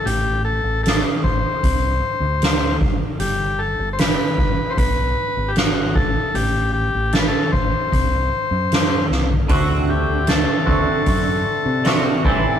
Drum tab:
HH |o---o---o---o---|o---o---o---o---|o---o---o---o---|o---o---o---o---|
SD |----o-------o---|----o-------o---|----o-------o-o-|----o-------o---|
FT |----------------|----------------|---------------o|----------------|
BD |------o-o-----o-|------o-o-----o-|------o-o-------|o-----o-o-----o-|